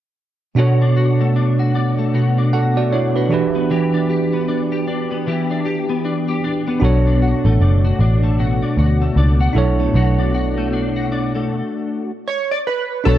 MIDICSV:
0, 0, Header, 1, 5, 480
1, 0, Start_track
1, 0, Key_signature, 2, "minor"
1, 0, Tempo, 780234
1, 354, Time_signature, 4, 2, 24, 8
1, 8110, End_track
2, 0, Start_track
2, 0, Title_t, "Synth keys"
2, 0, Program_c, 0, 88
2, 7552, Note_on_c, 0, 73, 76
2, 7699, Note_on_c, 0, 74, 72
2, 7703, Note_off_c, 0, 73, 0
2, 7743, Note_off_c, 0, 74, 0
2, 7795, Note_on_c, 0, 71, 78
2, 8030, Note_on_c, 0, 69, 81
2, 8043, Note_off_c, 0, 71, 0
2, 8110, Note_off_c, 0, 69, 0
2, 8110, End_track
3, 0, Start_track
3, 0, Title_t, "Tine electric piano"
3, 0, Program_c, 1, 4
3, 341, Note_on_c, 1, 47, 56
3, 347, Note_on_c, 1, 62, 55
3, 353, Note_on_c, 1, 66, 54
3, 362, Note_on_c, 1, 69, 50
3, 368, Note_on_c, 1, 73, 62
3, 469, Control_c, 1, 64, 127
3, 1292, Note_off_c, 1, 62, 0
3, 1296, Note_off_c, 1, 66, 0
3, 1300, Note_off_c, 1, 69, 0
3, 1303, Note_off_c, 1, 73, 0
3, 1556, Note_on_c, 1, 78, 53
3, 1559, Note_on_c, 1, 69, 46
3, 1693, Note_off_c, 1, 78, 0
3, 1694, Note_off_c, 1, 69, 0
3, 1703, Note_on_c, 1, 74, 58
3, 1704, Note_on_c, 1, 66, 51
3, 1793, Note_off_c, 1, 66, 0
3, 1793, Note_off_c, 1, 74, 0
3, 1798, Note_on_c, 1, 73, 60
3, 1803, Note_on_c, 1, 64, 49
3, 1934, Note_off_c, 1, 73, 0
3, 1936, Note_off_c, 1, 64, 0
3, 1940, Note_on_c, 1, 71, 54
3, 1944, Note_on_c, 1, 62, 46
3, 2005, Note_off_c, 1, 47, 0
3, 2021, Note_on_c, 1, 52, 57
3, 2024, Note_off_c, 1, 62, 0
3, 2031, Note_on_c, 1, 62, 58
3, 2037, Note_on_c, 1, 66, 49
3, 2043, Control_c, 1, 64, 0
3, 2045, Note_off_c, 1, 71, 0
3, 2046, Note_on_c, 1, 67, 55
3, 2052, Note_on_c, 1, 71, 65
3, 2162, Control_c, 1, 64, 127
3, 3925, Note_off_c, 1, 52, 0
3, 3930, Note_off_c, 1, 62, 0
3, 3933, Note_off_c, 1, 66, 0
3, 3938, Note_off_c, 1, 67, 0
3, 3941, Note_off_c, 1, 71, 0
3, 4183, Note_on_c, 1, 62, 55
3, 4192, Note_on_c, 1, 66, 54
3, 4202, Note_on_c, 1, 69, 52
3, 4205, Control_c, 1, 64, 0
3, 4213, Note_on_c, 1, 73, 62
3, 4329, Control_c, 1, 64, 127
3, 5846, Note_off_c, 1, 62, 0
3, 5851, Note_off_c, 1, 66, 0
3, 5856, Note_off_c, 1, 69, 0
3, 5861, Note_off_c, 1, 73, 0
3, 5862, Note_on_c, 1, 62, 59
3, 5873, Note_on_c, 1, 64, 54
3, 5882, Note_on_c, 1, 69, 59
3, 5886, Control_c, 1, 64, 0
3, 5892, Note_on_c, 1, 73, 67
3, 5983, Control_c, 1, 64, 127
3, 7046, Note_off_c, 1, 62, 0
3, 7051, Note_off_c, 1, 64, 0
3, 7056, Note_off_c, 1, 69, 0
3, 7061, Note_off_c, 1, 73, 0
3, 7086, Control_c, 1, 64, 0
3, 8022, Note_on_c, 1, 62, 54
3, 8031, Note_on_c, 1, 66, 51
3, 8041, Note_on_c, 1, 69, 53
3, 8052, Note_on_c, 1, 73, 63
3, 8110, Note_off_c, 1, 62, 0
3, 8110, Note_off_c, 1, 66, 0
3, 8110, Note_off_c, 1, 69, 0
3, 8110, Note_off_c, 1, 73, 0
3, 8110, End_track
4, 0, Start_track
4, 0, Title_t, "Clean electric guitar"
4, 0, Program_c, 2, 27
4, 357, Note_on_c, 2, 47, 68
4, 360, Note_on_c, 2, 66, 58
4, 502, Note_on_c, 2, 62, 50
4, 587, Note_off_c, 2, 66, 0
4, 594, Note_on_c, 2, 66, 54
4, 742, Note_on_c, 2, 57, 48
4, 834, Note_off_c, 2, 62, 0
4, 836, Note_on_c, 2, 62, 52
4, 974, Note_off_c, 2, 66, 0
4, 981, Note_on_c, 2, 66, 53
4, 1074, Note_off_c, 2, 62, 0
4, 1077, Note_on_c, 2, 62, 52
4, 1215, Note_off_c, 2, 57, 0
4, 1222, Note_on_c, 2, 57, 45
4, 1310, Note_off_c, 2, 47, 0
4, 1314, Note_off_c, 2, 66, 0
4, 1317, Note_on_c, 2, 47, 61
4, 1322, Note_on_c, 2, 66, 50
4, 1463, Note_off_c, 2, 62, 0
4, 1465, Note_on_c, 2, 62, 44
4, 1553, Note_off_c, 2, 66, 0
4, 1560, Note_on_c, 2, 66, 52
4, 1698, Note_off_c, 2, 57, 0
4, 1705, Note_on_c, 2, 57, 46
4, 1799, Note_off_c, 2, 62, 0
4, 1802, Note_on_c, 2, 62, 50
4, 1939, Note_off_c, 2, 66, 0
4, 1946, Note_on_c, 2, 66, 53
4, 2043, Note_on_c, 2, 52, 66
4, 2095, Note_off_c, 2, 47, 0
4, 2096, Note_off_c, 2, 57, 0
4, 2097, Note_off_c, 2, 66, 0
4, 2185, Note_on_c, 2, 59, 48
4, 2272, Note_off_c, 2, 52, 0
4, 2280, Note_on_c, 2, 52, 73
4, 2284, Note_on_c, 2, 67, 57
4, 2298, Note_off_c, 2, 62, 0
4, 2423, Note_on_c, 2, 62, 50
4, 2513, Note_off_c, 2, 67, 0
4, 2521, Note_on_c, 2, 67, 54
4, 2662, Note_off_c, 2, 59, 0
4, 2665, Note_on_c, 2, 59, 48
4, 2756, Note_off_c, 2, 62, 0
4, 2758, Note_on_c, 2, 62, 54
4, 2896, Note_off_c, 2, 67, 0
4, 2904, Note_on_c, 2, 67, 54
4, 2997, Note_off_c, 2, 62, 0
4, 2999, Note_on_c, 2, 62, 51
4, 3142, Note_off_c, 2, 59, 0
4, 3144, Note_on_c, 2, 59, 47
4, 3235, Note_off_c, 2, 52, 0
4, 3239, Note_off_c, 2, 67, 0
4, 3243, Note_on_c, 2, 52, 60
4, 3248, Note_on_c, 2, 67, 53
4, 3386, Note_off_c, 2, 62, 0
4, 3388, Note_on_c, 2, 62, 48
4, 3471, Note_off_c, 2, 67, 0
4, 3479, Note_on_c, 2, 67, 55
4, 3623, Note_off_c, 2, 59, 0
4, 3626, Note_on_c, 2, 59, 48
4, 3718, Note_off_c, 2, 62, 0
4, 3720, Note_on_c, 2, 62, 52
4, 3859, Note_off_c, 2, 67, 0
4, 3866, Note_on_c, 2, 67, 57
4, 3960, Note_off_c, 2, 62, 0
4, 3963, Note_on_c, 2, 62, 52
4, 4104, Note_off_c, 2, 59, 0
4, 4107, Note_on_c, 2, 59, 45
4, 4200, Note_off_c, 2, 67, 0
4, 4206, Note_on_c, 2, 47, 69
4, 4209, Note_on_c, 2, 66, 63
4, 4258, Note_off_c, 2, 52, 0
4, 4345, Note_off_c, 2, 62, 0
4, 4347, Note_on_c, 2, 62, 48
4, 4441, Note_off_c, 2, 66, 0
4, 4444, Note_on_c, 2, 66, 51
4, 4585, Note_off_c, 2, 59, 0
4, 4588, Note_on_c, 2, 57, 55
4, 4682, Note_off_c, 2, 62, 0
4, 4685, Note_on_c, 2, 62, 53
4, 4825, Note_off_c, 2, 66, 0
4, 4827, Note_on_c, 2, 66, 51
4, 4922, Note_off_c, 2, 62, 0
4, 4925, Note_on_c, 2, 62, 55
4, 5064, Note_off_c, 2, 57, 0
4, 5067, Note_on_c, 2, 57, 52
4, 5156, Note_off_c, 2, 47, 0
4, 5163, Note_on_c, 2, 47, 63
4, 5165, Note_off_c, 2, 66, 0
4, 5168, Note_on_c, 2, 66, 55
4, 5304, Note_off_c, 2, 62, 0
4, 5306, Note_on_c, 2, 62, 47
4, 5402, Note_off_c, 2, 66, 0
4, 5405, Note_on_c, 2, 66, 57
4, 5544, Note_off_c, 2, 57, 0
4, 5547, Note_on_c, 2, 57, 48
4, 5642, Note_off_c, 2, 62, 0
4, 5645, Note_on_c, 2, 62, 57
4, 5784, Note_off_c, 2, 66, 0
4, 5786, Note_on_c, 2, 66, 57
4, 5875, Note_off_c, 2, 47, 0
4, 5883, Note_on_c, 2, 47, 70
4, 6025, Note_off_c, 2, 57, 0
4, 6028, Note_on_c, 2, 57, 49
4, 6115, Note_off_c, 2, 47, 0
4, 6122, Note_on_c, 2, 47, 76
4, 6125, Note_off_c, 2, 66, 0
4, 6128, Note_on_c, 2, 66, 63
4, 6266, Note_off_c, 2, 62, 0
4, 6269, Note_on_c, 2, 62, 48
4, 6362, Note_off_c, 2, 66, 0
4, 6364, Note_on_c, 2, 66, 56
4, 6505, Note_off_c, 2, 57, 0
4, 6507, Note_on_c, 2, 57, 52
4, 6600, Note_off_c, 2, 62, 0
4, 6603, Note_on_c, 2, 62, 54
4, 6742, Note_off_c, 2, 66, 0
4, 6744, Note_on_c, 2, 66, 52
4, 6839, Note_off_c, 2, 62, 0
4, 6841, Note_on_c, 2, 62, 53
4, 6982, Note_off_c, 2, 57, 0
4, 6985, Note_on_c, 2, 57, 45
4, 7137, Note_off_c, 2, 47, 0
4, 7444, Note_off_c, 2, 57, 0
4, 7445, Note_off_c, 2, 62, 0
4, 7445, Note_off_c, 2, 66, 0
4, 8039, Note_on_c, 2, 47, 76
4, 8110, Note_off_c, 2, 47, 0
4, 8110, End_track
5, 0, Start_track
5, 0, Title_t, "Picked electric bass"
5, 0, Program_c, 3, 34
5, 4197, Note_on_c, 3, 35, 90
5, 4505, Note_off_c, 3, 35, 0
5, 4582, Note_on_c, 3, 33, 77
5, 4659, Note_off_c, 3, 33, 0
5, 4678, Note_on_c, 3, 30, 87
5, 4870, Note_off_c, 3, 30, 0
5, 4917, Note_on_c, 3, 33, 83
5, 5301, Note_off_c, 3, 33, 0
5, 5398, Note_on_c, 3, 38, 70
5, 5590, Note_off_c, 3, 38, 0
5, 5636, Note_on_c, 3, 37, 78
5, 5829, Note_off_c, 3, 37, 0
5, 5877, Note_on_c, 3, 35, 75
5, 6070, Note_off_c, 3, 35, 0
5, 6116, Note_on_c, 3, 35, 93
5, 7052, Note_off_c, 3, 35, 0
5, 8038, Note_on_c, 3, 35, 96
5, 8110, Note_off_c, 3, 35, 0
5, 8110, End_track
0, 0, End_of_file